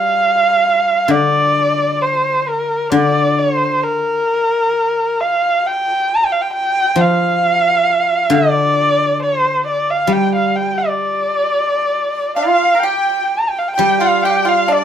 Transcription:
Already playing: G3 F5
1.08 D3 D5
2.02 C5
2.47 A#4
2.92 D3 D5
3.39 C5
3.84 A#4
5.20 F5
5.66 G5
6.16 A#5
6.25 G5
6.32 F5
6.41 G5
6.53 G5
6.96 F3
7.01 F5
8.30 D3
8.35 D5
9.23 C5
9.67 D5
9.91 F5
10.07 G3
10.12 G5
10.35 F5
10.56 G5
10.78 D5
12.35 F4 F5
12.43 D5
12.48 F5
12.75 A#4
12.80 G4 G5
12.85 G5
13.39 A#5
13.49 G5
13.58 F5
13.68 G5
13.74 G4 G5
13.79 G3
13.98 F4 F5
14.23 G4 G5
14.30 F5
14.36 G5
14.45 F4 F5
14.68 D4 D5
14.72 D5

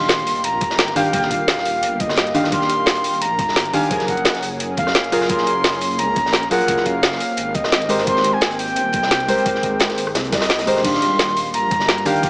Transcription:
Already playing: D#1 D#3 A#3 D4 F4 G4 F5 C6, impact
0.09 snare, closed hi-hat
0.18 closed hi-hat
0.27 closed hi-hat, open hi-hat
0.35 closed hi-hat
0.44 A#1 A#5, closed hi-hat
0.61 G1, kick, closed hi-hat
0.70 snare
0.78 snare, closed hi-hat
0.88 closed hi-hat
0.95 D#3 D4 G4 F5 G5, cross-stick, closed hi-hat, open hi-hat
1.05 closed hi-hat
1.12 D#1 D3 D#3 G4 F5, kick, closed hi-hat
1.22 snare
1.31 F5, kick, closed hi-hat
1.48 snare, closed hi-hat
1.58 snare
1.65 closed hi-hat, open hi-hat
1.83 G1, closed hi-hat
2.00 D#5, kick, closed hi-hat
2.09 cross-stick, snare
2.16 snare, closed hi-hat
2.27 closed hi-hat
2.34 D#3 D4 G4 F5, cross-stick, closed hi-hat, open hi-hat
2.44 cross-stick, snare
2.50 D#1 D#3 D4 G4 F5 C6, kick, closed hi-hat
2.62 snare
2.69 closed hi-hat
2.86 snare, closed hi-hat
2.95 closed hi-hat
3.04 closed hi-hat, open hi-hat
3.13 closed hi-hat
3.22 A#1 A#5, closed hi-hat
3.39 G1, kick, closed hi-hat
3.49 snare
3.56 snare, closed hi-hat
3.65 closed hi-hat
3.73 D#3 D4 G4 F5 G#5, cross-stick, closed hi-hat, open hi-hat
3.83 closed hi-hat
3.89 F#1 F3 F#3 A#3 C#4 G#4 A#4, kick, closed hi-hat
4.00 snare, closed hi-hat
4.08 F#5, kick, closed hi-hat
4.17 closed hi-hat
4.25 snare, closed hi-hat
4.35 snare, closed hi-hat
4.43 closed hi-hat, open hi-hat
4.60 closed hi-hat
4.77 F#2 F5, kick, closed hi-hat
4.87 cross-stick, snare
4.95 F#1, snare, closed hi-hat
5.04 closed hi-hat
5.11 F#3 F4 G#4 A#4, cross-stick, closed hi-hat, open hi-hat
5.22 cross-stick, snare
5.28 F#1 F#3 F4 G#4 A#4 C6, kick, closed hi-hat
5.38 snare
5.47 closed hi-hat
5.64 snare, closed hi-hat
5.74 closed hi-hat
5.81 closed hi-hat, open hi-hat
5.91 closed hi-hat
5.99 C#2 A#5, closed hi-hat
6.16 A#1, kick, closed hi-hat
6.26 snare
6.33 snare, closed hi-hat
6.43 closed hi-hat
6.50 F#3 F4 G#4 A#4 F#5, cross-stick, closed hi-hat, open hi-hat
6.61 closed hi-hat
6.67 F#1 F#3 F4 G#4 A#4, kick, closed hi-hat
6.77 snare
6.86 F5, kick, closed hi-hat
7.03 snare, closed hi-hat
7.12 snare
7.20 C4 G4, closed hi-hat, open hi-hat
7.37 G#1, closed hi-hat
7.54 D#5, kick, closed hi-hat
7.64 cross-stick, snare
7.72 snare, closed hi-hat
7.82 closed hi-hat
7.89 G#3 G4 A#4 C5, cross-stick, closed hi-hat, open hi-hat
7.98 cross-stick, snare
8.05 G#1 G#3 G4 A#4 C5 C6, kick, closed hi-hat
8.16 snare
8.24 closed hi-hat
8.33 G#5
8.41 snare, closed hi-hat
8.51 closed hi-hat
8.59 G5, closed hi-hat, open hi-hat
8.68 closed hi-hat
8.76 D#1, closed hi-hat
8.93 C2, kick, closed hi-hat
9.03 snare
9.11 snare, closed hi-hat
9.20 closed hi-hat
9.28 G#3 G4 A#4 C5, cross-stick, closed hi-hat, open hi-hat
9.38 closed hi-hat
9.44 G#1 G#3 G4 A#4 C5, kick, closed hi-hat
9.55 snare
9.63 kick, closed hi-hat
9.80 snare, closed hi-hat
9.89 snare, closed hi-hat
9.98 closed hi-hat, open hi-hat
10.07 cross-stick
10.15 C2, snare, closed hi-hat
10.24 closed hi-hat
10.32 D#5, kick, snare, closed hi-hat
10.41 cross-stick, snare, closed hi-hat
10.49 snare, closed hi-hat
10.59 snare, closed hi-hat
10.66 D#1 G#3 G4 A#4 C5, cross-stick, closed hi-hat, open hi-hat
10.77 cross-stick, snare
10.83 D#1 D#3 G3 A#3 D4 F4 G4 F5 C6, kick, closed hi-hat, crash
10.94 snare
11.02 closed hi-hat
11.19 snare, closed hi-hat
11.28 closed hi-hat
11.37 closed hi-hat, open hi-hat
11.46 closed hi-hat
11.54 A#1 A#5, closed hi-hat
11.71 G1, kick, closed hi-hat
11.80 snare
11.88 snare, closed hi-hat
11.98 closed hi-hat
12.05 D#3 D4 G4 F5 G5, cross-stick, closed hi-hat, open hi-hat
12.16 closed hi-hat
12.22 D#1 D3 D#3 G4 F5, kick, closed hi-hat

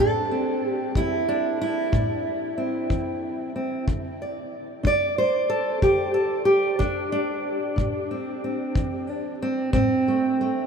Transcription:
0.00 A2 A4
0.31 C4
0.69 G4
0.95 E3 E4, kick
1.29 D4
1.61 E4
1.92 A2, kick
2.58 C4
2.90 E3, kick
3.56 C4
3.88 D3, kick
4.22 D5
4.83 D4 D5, kick
5.18 C5
5.50 A4
5.82 D3 G4, kick
6.14 A4
6.45 G4
6.79 D4, kick
7.12 D4
7.76 A2, kick
8.11 C4
8.44 C4
8.76 E3, kick
9.10 D4
9.42 C4
9.73 A2 C4, kick
10.08 A3
10.41 A3

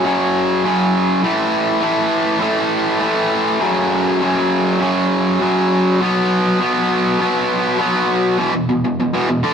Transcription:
0.04 F#2 C#3 F#3
0.63 F#2 C#3 F#3
1.22 A2 E3 A3
1.81 A2 E3 A3
2.40 A2 E3 A3
3.01 A2 E3 A3
3.60 F#2 C#3 F#3
4.21 F#2 C#3 F#3
4.80 F#2 C#3 F#3
5.40 F#2 C#3 F#3
6.01 B2 F#3 B3
6.59 B2 F#3 B3
7.19 B2 F#3 B3
7.79 B2 F#3 B3
8.38 E2 B2 E3
8.54 E2 B2
8.69 E2 B2
8.84 E2 B2
9.00 E2 B2
9.13 E2 B2 E3
9.29 E2 B2
9.43 D3 A3 D4

